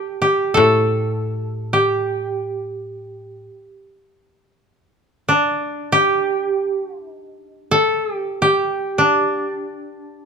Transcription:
koto
Already playing: G4 A4
0.22 G4
0.54 A2 A4
1.73 G4
5.29 D4
5.92 G4
6.90 F4
7.01 E4
7.13 D#4
7.71 A4
8.13 G4
8.42 G4
8.98 D4

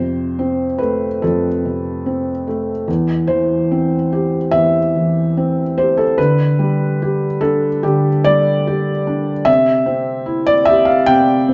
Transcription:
felt piano
Already playing: F2 C5
0.00 C3
0.39 C4
0.78 A3 B4
1.22 F2 A4
1.66 C3
2.06 C4
2.47 A3
2.88 E2
3.27 E3 C5
3.71 C4
4.13 G4
4.51 E2 E5
4.96 E3
5.37 C4
5.78 G4 C5
5.97 A4
6.18 D3 B4
6.59 G3
7.02 G4
7.41 D4 A4
7.83 D3 G4
8.24 G3 D5
8.67 G4
9.07 D4
9.45 C3 E5
9.86 C4
10.26 E4
10.47 D5
10.65 G4 E5
10.85 F5
11.06 C3 G5
11.48 C4

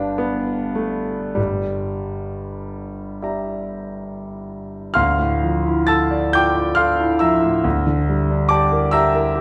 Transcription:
grand piano
Already playing: G1 D4 G4 B4 F5 A5
0.18 B3
0.75 A3
1.35 G1 G3
3.22 G4 D5 E5 A#5
4.94 D2 F5 C6 F6
5.18 A2
5.43 F3
5.67 E4
5.87 A4 A5 E6 A6
6.11 D5
6.33 F4 G5 D6 G6
6.56 D5
6.75 A4 F5 C6 F6
7.01 E4
7.19 F3 E5 A#5 E6
7.44 A2
7.64 D2
7.87 D3
8.09 G3
8.31 D4
8.49 G4 D5 A5 D6
8.72 A#4
8.91 G4 E5 A#5 E6
9.14 A#4
9.36 G4

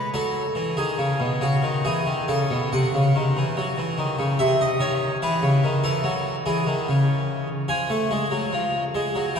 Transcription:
harpsichord
0.14 F#3 A4
0.55 E3
0.77 D#3 G#4
0.98 C#3
1.20 B2
1.41 C#3 F#4
1.63 D#3
1.85 E3 G#4
2.06 D#3
2.28 C#3 A4
2.50 B2
2.73 C3 F#5
2.95 C#3
3.15 D#3
3.37 E3
3.57 F#3
3.78 E3
3.98 D#3
4.19 C#3
4.39 C3 E5
4.61 D#5
4.80 D#3 C#5
5.22 E3 B4
5.43 C#3
5.64 D#3
5.84 E3 A4
6.04 F#3
6.46 E3 G#4
6.67 D#3
6.88 C#3
7.68 F3 G#5
7.90 A3
8.11 G#3
8.31 F#3
8.53 F3
8.95 G#3
9.15 F#3
9.36 E3 G5

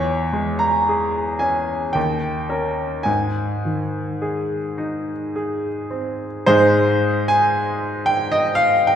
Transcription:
grand piano
Already playing: E2 C#5
0.33 G#3
0.59 A#5
0.89 G#4
1.39 C#4 G#5
1.93 D#2 G5
2.49 C#4 A#4
3.03 G#2 G#5
3.65 D#3
4.22 G#4
4.78 D#4
5.36 G#4
5.91 C4
6.46 G#2 G#3 D#4 G#4 C5
7.28 G#5
8.06 G5
8.32 D#5
8.55 F5
8.87 G5

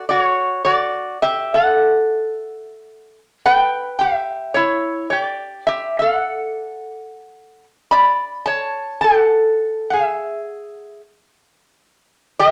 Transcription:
resonator guitar played with a steel bar
0.09 F#4 D5
0.20 C#5
0.65 F#4 D5
1.22 G4 E5
1.54 A4 F#5
3.46 B4 G5
3.99 G4 E5
4.54 E4 C#5
5.10 G4 C#5
5.21 D5
5.67 G4 E5
5.99 A4 F#5
7.91 D5 B5
8.46 C#5 A5
9.01 A4 F#5
9.90 G#4 E5
12.39 G4 E5

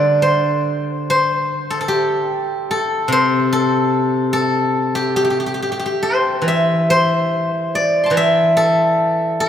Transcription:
guzheng
Already playing: D3 G3 A4 C5 D5
0.22 C5
1.10 C5
1.70 A4
1.81 A4
1.88 G4
2.71 A4
3.08 C3
3.12 C5
3.53 A4
4.33 A4
4.95 G4
5.16 G4
5.25 G4
5.30 G4
5.40 G4
5.46 G4
5.54 G4
5.62 G4
5.72 G4
5.79 G4
5.86 G4
6.03 C5
6.42 E3
6.48 E5
6.90 C5
7.75 D5
8.04 A5 C6
8.10 E3 G5
8.17 E5
8.57 A4
9.40 C5

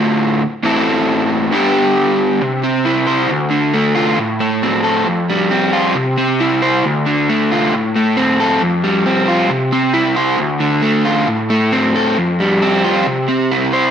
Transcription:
overdriven electric guitar
Already playing: D2 A2 D3 A3 F4
0.63 A2 E3 A3 C4 E4 A4
1.52 G2 D3 G3 B3 D4 G4
2.41 C3
2.63 C4
2.85 E4
3.07 C5
3.29 D2
3.50 D3
3.74 A3
3.96 F4
4.18 A2
4.40 A3
4.62 C4
4.83 A4
5.06 F2
5.29 G3
5.51 C4
5.73 F4
5.95 C3
6.18 C4
6.40 E4
6.62 C5
6.85 D2
7.06 D3
7.29 A3
7.52 F4
7.73 A2
7.96 A3
8.17 C4
8.40 A4
8.61 F2
8.84 G3
9.06 C4
9.28 F4
9.50 C3
9.72 C4
9.94 E4
10.16 C5
10.38 D2
10.60 D3
10.82 A3
11.05 F4
11.28 A2
11.50 A3
11.72 C4
11.96 A4
12.18 F2
12.40 G3
12.62 C4
12.84 F4
13.07 C3
13.29 C4
13.52 E4
13.73 C5

